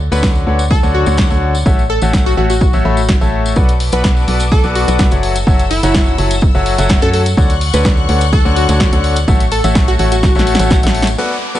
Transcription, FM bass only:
0.12 D2
0.47 D2
0.83 D2
1.07 D2
1.31 D2
1.66 A1
2.02 A1
2.37 A1
2.73 A1
2.85 A1
3.21 A1
3.56 B1
3.93 B1
4.28 B1
4.64 B1
4.88 B1
5.12 F#1
5.47 F#1
5.83 F#1
6.18 F#1
6.55 F#1
6.78 F#1
7.02 F#2
7.37 D2
7.74 D2
8.09 D2
8.45 D2
8.69 D2
8.93 D2
9.28 A1
9.64 A1
9.99 A1
10.36 A1
10.59 A1
10.83 A1

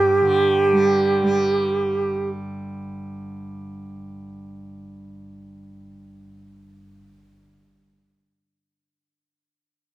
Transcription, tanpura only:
Already playing: G2 D3 G3
0.22 D3
0.72 G3
1.23 G3

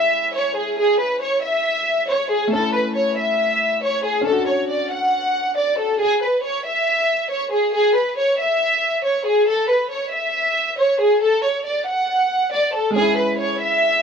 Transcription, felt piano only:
Already playing: G#3 C#4 E4
2.47 A3
2.53 C#4
2.58 E4
4.21 C#4
4.27 D4
4.32 F#4
12.90 G#3
12.96 C#4
13.01 E4

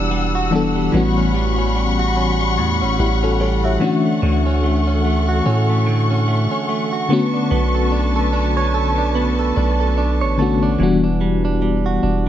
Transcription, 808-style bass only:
Already playing: E1
0.94 A1
2.59 E2
2.82 A1
3.00 A1
4.23 D2
5.46 A2
7.52 B1
9.57 B1
10.22 A1
10.80 E1
12.04 E1

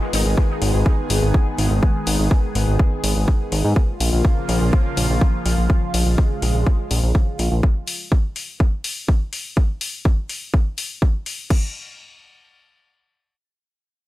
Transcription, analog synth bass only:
0.13 G#1
0.26 G#1
0.62 G#1
0.74 G#1
1.10 G#1
1.23 G#1
1.58 G#1
1.71 G#1
2.07 G#1
2.19 G#1
2.55 G#1
2.68 G#1
3.04 G#1
3.16 G#1
3.52 G#1
3.65 G#2
4.00 A#1
4.13 A#1
4.49 A#1
4.61 A#1
4.97 A#1
5.10 A#1
5.46 A#1
5.58 A#1
5.94 A#1
6.06 A#1
6.42 A#1
6.55 A#1
6.91 A#1
7.03 A#1
7.39 A#1
7.52 A#1

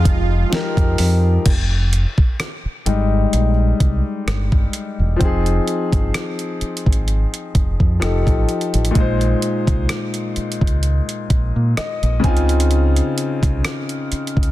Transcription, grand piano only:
Already playing: F3 D#4 G4 G#4
0.50 F3 D#4 G4
0.54 A#4
2.86 G3 G#3 D#4
5.16 F3 C4
5.22 D#4 G#4
8.00 F3 D#4 G4
8.04 A4
8.91 A#2 G#3
8.97 D#4 C5
11.77 D#5
12.20 C#3 C4
12.24 D#4 G#5
12.28 F4

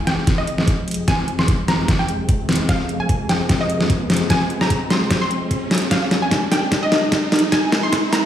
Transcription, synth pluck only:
0.07 G5
0.38 D#5
1.08 G#5
1.39 C6
1.68 A#5
1.99 G5
2.69 F5
3.00 G#5
3.29 G5
3.61 D#5
4.30 G#5
4.61 A#5
4.91 C6
5.22 C6
5.91 F5
6.22 G#5
6.52 G5
6.83 D#5
7.52 G#5
7.83 C6
8.13 A#5

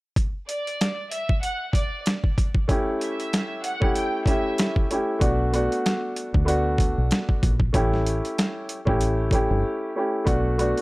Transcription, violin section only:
0.47 D5
1.11 E5
1.43 F#5
1.75 D5
3.01 E5
3.64 F#5
3.96 G5
4.26 E5

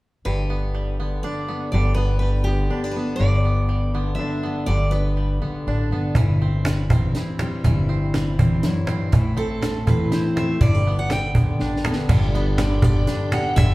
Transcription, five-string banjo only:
0.26 D3
0.50 B3
0.75 G3
1.00 B3
1.24 D4
1.48 B3
1.74 D3
1.97 B3
2.22 G3
2.47 B3
2.70 D4
2.96 B3
3.20 D3
3.45 B3
3.69 G3
3.95 B3
4.19 D4
4.43 B3
4.68 D3
4.92 B3
5.17 G3
5.42 B3
5.68 D4
5.92 B3
6.17 E3
6.42 C4
6.66 G3
6.93 C4
7.17 E4
7.39 C4
7.65 E3
7.89 C4
8.14 G3
8.39 C4
8.64 E4
8.88 C4
9.12 E3
9.37 C4
9.61 A3
9.87 C4
10.12 E4
10.36 C4
10.61 D3
10.87 B3
11.11 G3
11.36 B3
11.61 D4
11.85 B3
12.09 D3
12.35 B3
12.59 G3
12.82 B3
13.07 D4
13.33 B3
13.57 D3

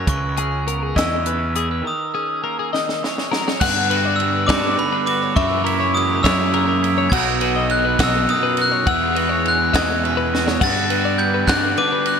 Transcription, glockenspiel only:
0.09 C#6
0.98 E6
1.87 D#6
3.60 F#6
4.16 E6
4.46 D6
4.79 B5
5.06 D6
5.36 C#6
5.95 D#6
6.23 E6
7.10 G#6
7.71 F#6
8.03 E6
8.30 D#6
8.62 F#6
8.89 E6
9.48 F#6
9.76 G#6
10.63 A6
11.18 G6
11.47 F#6
11.78 D6
12.07 F#6

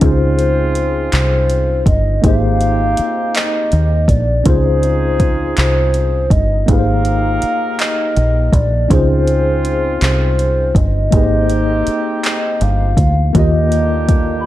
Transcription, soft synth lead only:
0.03 C5
1.13 C5
1.87 D#5
2.25 F5
3.36 D#5
4.09 D5
4.46 C5
5.58 C5
6.31 D#5
6.69 F5
7.80 D#5
8.54 D5
8.91 C5
10.02 C5
10.77 D#5
12.25 D#5
12.62 F5
13.36 D#5
14.41 B5

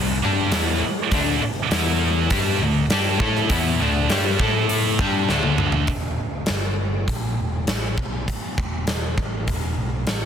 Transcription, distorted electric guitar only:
Already playing: C3 G3
0.22 G3 D4 G4
0.52 E3 B3 E4
0.82 muted distorted electric guitar stroke
1.11 D3 A3 D4
1.41 muted distorted electric guitar stroke
1.71 E3 B3 E4
2.30 G3 D4 G4
2.61 D3 A3
2.91 G3 D4 G4
3.19 A3 E4 A4
3.48 E3 B3 E4
3.80 D3 A3 D4
4.10 G3 D4 G4
4.40 A3 E4 A4
5.01 G3 D4 G4
5.29 D3 A3 D4

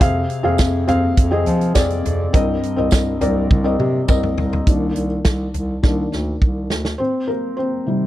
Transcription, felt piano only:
0.00 C3 C4 G#4 F5
0.43 C4 G#4 F5
0.87 C4 G#4 F5
1.31 C4 G#4 D#5
1.74 C4 G#4 D5
2.33 G2 C4 A#4 D#5
2.76 C4 A#4 D#5
3.21 C4 A#4 D5
3.64 C4 A#4 D#5
4.08 C4 A#4 D#5
4.67 D#3 A#3 D4
5.83 D#3 A#3 D4
6.98 C4 C5
7.28 A#3 A#4
7.57 C4 C5
7.87 C3 D#3 G3

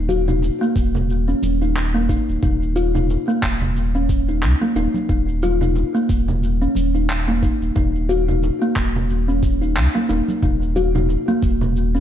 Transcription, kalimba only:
0.09 F#4
0.28 D#4
0.61 A#3
1.28 C#4
1.62 D#4
1.95 A#3
2.09 D#4
2.43 D#4
2.76 F4
2.95 D#4
3.28 A#3
3.95 C#4
4.29 D#4
4.62 A#3
4.76 D#4
5.10 D#4
5.43 F4
5.62 D#4
5.95 A#3
6.62 C#4
6.95 D#4
7.28 A#3
7.42 D#4
7.76 D#4
8.09 F#4
8.28 D#4
8.62 A#3
9.28 C#4
9.62 D#4
9.95 A#3
10.09 D#4
10.43 D#4
10.76 F#4
10.95 D#4
11.28 A#3
11.95 C#4

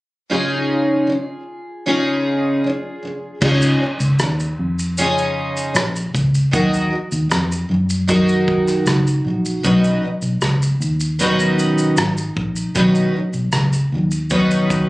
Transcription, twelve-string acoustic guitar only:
0.30 C#3 C#4 D#4 F4 G#4
1.07 C#3 C#4
1.86 C#3 C#4 D#4 F4 G#4
2.64 C#3 C#4
3.03 C#3 C#4
3.41 C#3 C#4 D#4 F4 G#4
3.80 C#3 C#4
4.21 C#3 C#4
4.98 C#3 C#4 D#4 F4 G#4
5.74 C#3 C#4
6.51 D#3 F#3 D#4 F#4 A#4
6.90 D#3 F#3
7.29 D#3 F#3
7.69 D#3 F#3
8.07 D#3 F#3 D#4 F#4 A#4
8.87 D#3 F#3
9.25 D#3 F#3
9.63 B2 D#3 F#3 C#4 D#4 B4
10.03 B2 D#3 F#3
10.42 B2 D#3 F#3
11.19 B2 D#3 F#3 C#4 D#4 B4
11.97 B2 D#3 F#3
12.75 B2 D#3 F#3 C#4 D#4 B4
13.14 B2 D#3 F#3
13.52 B2 D#3 F#3
13.92 B2 D#3 F#3
14.30 B2 D#3 F#3 C#4 D#4 B4

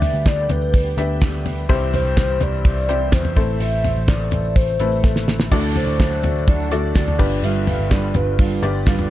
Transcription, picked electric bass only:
Already playing: D2
0.14 D2
0.49 D2
0.97 D2
1.69 C2
2.05 C2
2.40 C2
2.65 C2
3.12 E2
3.36 A1
3.60 A1
3.96 A1
4.32 A1
4.80 A1
5.52 D2
5.87 D2
6.24 D2
6.48 D2
6.95 D2
7.19 G1
7.43 G1
7.79 G1
8.15 G1
8.63 G1

